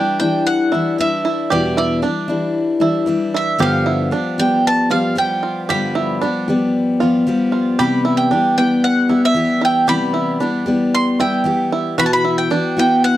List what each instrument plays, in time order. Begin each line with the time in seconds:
Already playing: steel-string acoustic guitar E3 G3 D4 E4, five-string banjo D4, mandolin G5
0.20 steel-string acoustic guitar E3 G3 D4 E4, mandolin G5
0.47 mandolin F#5
0.72 steel-string acoustic guitar E3 G3 D4 E4, five-string banjo E4
0.98 steel-string acoustic guitar E3 G3 D4 E4, mandolin E5
1.25 five-string banjo E4
1.50 steel-string acoustic guitar E2 B2 E3 G3 D4 E4, five-string banjo G4, mandolin D5
1.77 five-string banjo E4, mandolin D5
2.02 steel-string acoustic guitar E3 G3 D4 E4, five-string banjo D4
2.28 steel-string acoustic guitar E3 G3 D4 E4
2.80 steel-string acoustic guitar E3 G3 D4 E4, five-string banjo E4
3.06 steel-string acoustic guitar E3 G3 D4 E4
3.34 five-string banjo E4, mandolin E5
3.58 steel-string acoustic guitar G2 D3 F3 G3 B3 G4, five-string banjo G4, mandolin F5
3.86 five-string banjo E4
4.11 steel-string acoustic guitar F3 G3 B3 G4, five-string banjo D4
4.38 steel-string acoustic guitar F3 G3 B3 G4, mandolin G5
4.67 mandolin A5
4.90 steel-string acoustic guitar F3 G3 B3 G4, five-string banjo F4, mandolin F5
5.15 steel-string acoustic guitar F3 G3 B3 G4, mandolin G5
5.43 five-string banjo F4
5.69 steel-string acoustic guitar G2 D3 F3 G3 B3 G4, five-string banjo G4, mandolin B5
5.95 five-string banjo E4
6.21 steel-string acoustic guitar F3 G3 B3 G4, five-string banjo D4
6.48 steel-string acoustic guitar F3 G3 B3 G4
7.00 steel-string acoustic guitar F3 G3 B3 G4, five-string banjo F4
7.27 steel-string acoustic guitar F3 G3 B3 G4
7.52 five-string banjo F4
7.79 steel-string acoustic guitar C3 E3 G3 B3 G4, five-string banjo G4, mandolin B5
8.05 five-string banjo E4
8.17 mandolin G5
8.31 steel-string acoustic guitar E3 G3 B3 G4, five-string banjo D4
8.57 steel-string acoustic guitar G3 B3 G4, mandolin G5
8.84 mandolin F#5
9.09 steel-string acoustic guitar G3 B3 G4, five-string banjo E4
9.25 mandolin E5
9.34 steel-string acoustic guitar E3 G3 B3 G4
9.61 five-string banjo E4, mandolin G5
9.87 steel-string acoustic guitar C3 E3 G3 B3 G4, five-string banjo G4, mandolin B5
10.14 five-string banjo E4
10.40 steel-string acoustic guitar E3 G3 B3 G4, five-string banjo D4
10.66 steel-string acoustic guitar G3 B3 G4
10.95 mandolin C6
11.19 steel-string acoustic guitar G3 B3 G4, five-string banjo E4, mandolin G5
11.44 steel-string acoustic guitar E3 G3 B3 G4
11.72 five-string banjo E4
11.98 steel-string acoustic guitar B2 E3 B3 E4 F#4, five-string banjo F#4, mandolin B5
12.06 mandolin A5
12.13 mandolin B5
12.25 five-string banjo E4
12.38 mandolin G5
12.50 steel-string acoustic guitar E3 B3 E4 F#4, five-string banjo D4
12.77 steel-string acoustic guitar B3 E4 F#4, mandolin G5
13.04 mandolin F#5